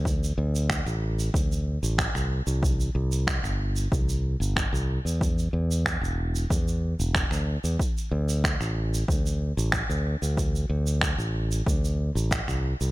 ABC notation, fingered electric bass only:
X:1
M:4/4
L:1/16
Q:1/4=93
K:C
V:1 name="Fingered electric bass" clef=bass
D,,2 D,,3 A,,,3 D,,3 A,,,2 C,,2 C,,- | C,,2 C,,3 G,,,3 C,,3 G,,,2 C,,2 E,,- | E,,2 E,,3 E,,,3 E,,3 E,,,2 D,,2 E,, | z2 D,,3 A,,,3 D,,3 A,,,2 D,,2 D,,- |
D,,2 D,,3 A,,,3 D,,3 A,,,2 C,,2 C,, |]